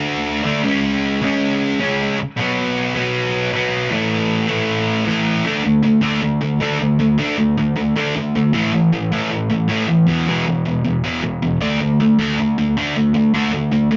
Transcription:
Already playing: D3 A3 D4
0.43 D3 A3 D4
0.63 C#3 G#3 C#4
1.21 C#3 G#3 C#4
1.80 C#3 G#3 C#4
2.37 B2 F#3 B3
2.95 B2 F#3 B3
3.52 B2 F#3 B3
3.90 A2 E3 A3
4.47 A2 E3 A3
5.05 A2 E3 A3
5.45 D3 A3 D4
5.64 D3 A3
5.83 D3 A3
6.01 D3 A3 D4
6.22 D3 A3
6.41 D3 A3
6.60 D3 A3 D4
6.80 D3 A3
7.00 D3 A3
7.19 D3 A3 D4
7.38 D3 A3
7.58 D3 A3
7.76 D3 A3
7.96 D3 A3 D4
8.15 D3 A3
8.35 D3 A3
8.53 A2 E3 A3
8.73 A2 E3
8.93 A2 E3
9.12 A2 E3 A3
9.31 A2 E3
9.50 A2 E3
9.69 A2 E3 A3
9.89 A2 E3
10.08 E2 B2 E3
10.28 E2 B2 E3
10.47 E2 B2
10.66 E2 B2
10.85 E2 B2
11.04 E2 B2 E3
11.22 E2 B2
11.42 E2 B2
11.61 D3 A3 D4
11.81 D3 A3
12.00 D3 A3
12.19 D3 A3 D4
12.39 D3 A3
12.58 D3 A3
12.77 D3 A3 D4
12.96 D3 A3
13.14 D3 A3
13.34 D3 A3 D4
13.53 D3 A3
13.72 D3 A3
13.91 D3 A3

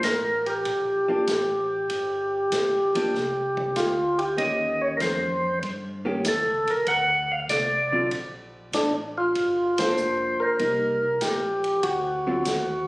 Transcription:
0.03 A1 A#4, kick, snare, hi-hat pedal, ride
0.46 G4, ride
0.65 A#1, kick, ride
1.08 F3 A#3 D4
1.27 A1, kick, snare, hi-hat pedal, ride
1.90 G1, kick, ride
2.52 A#1, kick, snare, hi-hat pedal, ride
2.95 F3 A#3 D4, ride
3.14 C2, kick, snare
3.57 kick
3.76 D2 F4, kick, snare, hi-hat pedal, ride
4.19 G4, ride
4.38 D#2 D#3 A#3 C#4 G4 D#5, kick, ride
4.81 C#5
4.97 F2 A#4, kick, snare, hi-hat pedal, ride
5.01 C5
5.63 G2, kick, ride
6.05 D#3 A#3 C#4 G4
6.25 D#2 A4, kick, snare, hi-hat pedal, ride
6.45 C#2
6.65 A#1, ride
6.70 A#4
6.87 D2 F#5, kick, ride
7.32 F5
7.49 C2 D5, kick, snare, hi-hat pedal, ride
7.92 D3 F#3 C4 F4
8.11 A#1, kick, ride
8.73 A1 D4, kick, snare, hi-hat pedal, ride
9.18 F4
9.35 G1, kick, ride
9.78 F3 A#3 D4 C5, snare, ride
9.97 F1, hi-hat pedal
10.40 F1 A#4
10.59 C2 G3 A#3 D#4, kick, ride
11.21 A#1 G4, kick, snare, hi-hat pedal, ride
11.64 ride
11.83 D2 F#4, kick, ride
12.27 D3 F#3 C4 F4
12.45 D#2, kick, snare, hi-hat pedal, ride

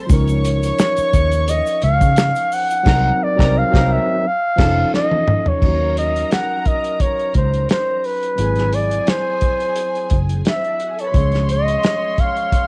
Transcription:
0.02 C5 C6
0.07 C#2 F3 C#4 D#4 C#5 C#6, kick, closed hi-hat, shaker
0.12 A#4
0.28 closed hi-hat, shaker
0.45 C#5, closed hi-hat, shaker
0.63 closed hi-hat, shaker
0.79 snare, closed hi-hat, shaker
0.97 muted fingered electric bass stroke, closed hi-hat, shaker
1.13 D#2, kick, closed hi-hat, shaker
1.32 closed hi-hat, shaker
1.48 D#5, closed hi-hat, shaker
1.66 closed hi-hat, shaker
1.82 C#2 F5, closed hi-hat
2.01 C#3, kick, closed hi-hat, shaker
2.16 snare, closed hi-hat, shaker
2.35 closed hi-hat, shaker
2.52 F#5, open hi-hat, shaker
2.70 closed hi-hat, shaker
2.83 C2 F#3 C4 D#4 A#4 A#5, kick, snare, crash
2.95 A#4
3.23 D5
3.36 C2 F#3 C4 D#4 A#4 A#5, kick, snare
3.48 A#4
3.58 F5
3.71 C2 F#3 C4 D#4 A#4 A#5, kick
3.75 snare
3.83 A#4
3.93 E5
4.27 F5
4.56 F1 F3 C#4 D#4 A4 A5, kick, snare, crash
4.62 A4
4.94 D#5, snare
5.11 high tom
5.28 mid tom
5.46 C#5, floor tom
5.59 D#2 F3 C#4 D#4 A#4 A#5, kick, crash
5.65 F#3 F#4
5.97 D#5, closed hi-hat
6.16 closed hi-hat
6.31 F#5, snare, closed hi-hat
6.66 D#5, kick, closed hi-hat
6.84 closed hi-hat
7.00 C#5, kick, closed hi-hat
7.19 closed hi-hat
7.34 C#2 C5, kick, closed hi-hat
7.54 closed hi-hat
7.69 C5, snare, closed hi-hat
8.04 B4, open hi-hat
8.23 closed hi-hat
8.36 G#1 F#3 C4 E4 G#4 G#5, closed hi-hat
8.41 G#4
8.56 snare, closed hi-hat
8.73 D5, closed hi-hat
8.91 closed hi-hat
9.07 C5, snare, closed hi-hat
9.41 kick, closed hi-hat
9.60 closed hi-hat
9.76 closed hi-hat
9.95 closed hi-hat
10.10 F#1, kick, closed hi-hat
10.29 closed hi-hat
10.45 E5, snare, closed hi-hat
10.54 C4 C5
10.64 D4 D5, closed hi-hat
10.73 E4 E5
10.80 F#4 F#5, closed hi-hat
10.89 G#4 G#5
10.99 A4 C#5 A5, closed hi-hat
11.06 B4 B5
11.12 C#2 F3 G#3 C#5 C6, kick, closed hi-hat
11.16 C#4 G#4
11.32 snare, closed hi-hat
11.49 D#5, closed hi-hat
11.68 closed hi-hat
11.83 snare, closed hi-hat
12.18 F5, kick, closed hi-hat
12.37 closed hi-hat
12.52 kick, closed hi-hat

